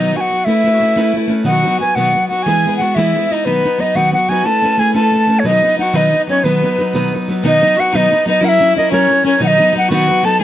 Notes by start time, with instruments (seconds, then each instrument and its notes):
Already playing: steel-string acoustic guitar B2 D#3 F#3 B3 D#4 B4, fiddle D#4, flute D#5
0.13 steel-string acoustic guitar F#3 B3 D#4 B4, fiddle F#4, flute G#5
0.21 flute F#5
0.30 steel-string acoustic guitar F#3 B3 D#4 B4
0.45 steel-string acoustic guitar A3 C#4 E4, fiddle E4, flute E5
0.49 steel-string acoustic guitar B4
0.64 steel-string acoustic guitar A3 C#4 E4 B4
0.73 fiddle E4 F#4
0.80 steel-string acoustic guitar A3 C#4 E4 B4
0.96 steel-string acoustic guitar A3 C#4 E4 B4, fiddle D#4
1.02 fiddle E4
1.13 steel-string acoustic guitar A3 C#4 E4 B4
1.27 steel-string acoustic guitar A3 C#4 E4 B4
1.44 steel-string acoustic guitar B2 D#3 F#3 B3 D#4 B4, fiddle F#4, flute F#5
1.63 steel-string acoustic guitar F#3 B3 D#4 B4
1.79 steel-string acoustic guitar F#3 B3 D#4 B4, flute G#5
1.95 steel-string acoustic guitar B2 D#3 F#3 B3 D#4 B4, fiddle F#4, flute F#5
2.13 steel-string acoustic guitar F#3 B3 D#4 B4
2.28 steel-string acoustic guitar F#3 B3 D#4, fiddle F#4, flute F#5
2.33 steel-string acoustic guitar B4
2.43 steel-string acoustic guitar E3, fiddle G#4, flute G#5
2.47 steel-string acoustic guitar G#3 B3 E4 B4
2.65 steel-string acoustic guitar G#3 B3 E4 B4
2.77 steel-string acoustic guitar G#3 B3, fiddle F#4, flute F#5
2.82 steel-string acoustic guitar E4 B4
2.95 steel-string acoustic guitar E3 G#3 B3 E4 B4, fiddle E4, flute E5
3.15 steel-string acoustic guitar G#3 B3 E4 B4
3.29 steel-string acoustic guitar G#3 B3 E4 B4, fiddle D#4, flute D#5
3.45 steel-string acoustic guitar B2 D#3 F#3 B3 D#4 B4, fiddle B3, flute B4
3.63 steel-string acoustic guitar F#3 B3 D#4 B4
3.78 steel-string acoustic guitar F#3 B3 D#4, fiddle D#4, flute D#5
3.82 steel-string acoustic guitar B4
3.94 steel-string acoustic guitar B2 D#3 F#3 B3 D#4 B4, fiddle F#4, flute F#5
4.12 steel-string acoustic guitar F#3 B3 D#4 B4, fiddle F#4, flute F#5
4.28 steel-string acoustic guitar F#3 B3 D#4 B4, flute G#5
4.44 steel-string acoustic guitar A3 C#4 E4 B4, fiddle A4, flute A5
4.62 steel-string acoustic guitar A3 C#4 E4 B4
4.77 steel-string acoustic guitar A3 C#4 E4 B4, fiddle G#4, flute G#5
4.94 steel-string acoustic guitar A3 C#4 E4 B4, fiddle A4, flute A5
5.12 steel-string acoustic guitar A3 C#4 E4
5.16 steel-string acoustic guitar B4
5.27 steel-string acoustic guitar A3 C#4 E4 B4
5.39 flute C#5
5.43 steel-string acoustic guitar B2 D#3 F#3 B3 D#4 B4, flute D#5
5.48 fiddle D#4
5.62 steel-string acoustic guitar F#3 B3 D#4 B4
5.76 steel-string acoustic guitar F#3 B3 D#4 B4, flute F#5
5.82 fiddle F#4
5.93 steel-string acoustic guitar B2 D#3 F#3 B3 D#4 B4, fiddle D#4, flute D#5
6.11 steel-string acoustic guitar F#3 B3 D#4 B4
6.27 steel-string acoustic guitar F#3 B3 D#4 B4, fiddle C#4, flute C#5
6.43 steel-string acoustic guitar B2 D#3 F#3 B3 D#4 B4, fiddle B3, flute B4
6.62 steel-string acoustic guitar F#3 B3 D#4 B4
6.78 steel-string acoustic guitar F#3 B3 D#4 B4
6.93 steel-string acoustic guitar B2 D#3 F#3 B3 D#4 B4
7.12 steel-string acoustic guitar F#3 B3 D#4 B4
7.28 steel-string acoustic guitar F#3 B3 D#4 B4
7.43 steel-string acoustic guitar B2 D#3 F#3 B3 D#4 B4, fiddle D#4, flute D#5
7.61 steel-string acoustic guitar F#3 B3 D#4 B4
7.76 steel-string acoustic guitar F#3 B3 D#4, fiddle F#4, flute F#5
7.81 steel-string acoustic guitar B4
7.92 steel-string acoustic guitar B2 D#3 F#3 B3 D#4 B4, fiddle D#4, flute D#5
8.10 steel-string acoustic guitar F#3 B3 D#4 B4
8.26 steel-string acoustic guitar F#3 B3 D#4 B4, fiddle D#4, flute D#5
8.40 steel-string acoustic guitar F#3 C#4 E4 A#4, fiddle E4
8.45 flute E5 F#5
8.60 steel-string acoustic guitar F#3 C#4 E4 A#4
8.75 steel-string acoustic guitar F#3 C#4 E4 A#4, flute D#5
8.90 steel-string acoustic guitar F#3 C#4 E4, fiddle C#4, flute C#5
8.94 steel-string acoustic guitar A#4
9.08 steel-string acoustic guitar F#3 C#4 E4 A#4
9.23 steel-string acoustic guitar F#3 C#4 E4 A#4, fiddle C#4
9.27 flute C#5
9.38 steel-string acoustic guitar B2 D#3 F#3 B3 D#4, fiddle D#4
9.42 steel-string acoustic guitar B4, flute F#5
9.47 flute D#5
9.58 steel-string acoustic guitar F#3 B3 D#4 B4
9.73 steel-string acoustic guitar F#3 B3 D#4 B4
9.78 flute F#5
9.88 steel-string acoustic guitar B2 D#3 F#3 B3, fiddle F#4
9.92 steel-string acoustic guitar D#4 B4, flute F#5
10.07 steel-string acoustic guitar F#3 B3 D#4 B4
10.23 steel-string acoustic guitar F#3 B3 D#4 B4, fiddle A4, flute A5
10.39 steel-string acoustic guitar E3 G#3 B3 E4 B4, fiddle G#4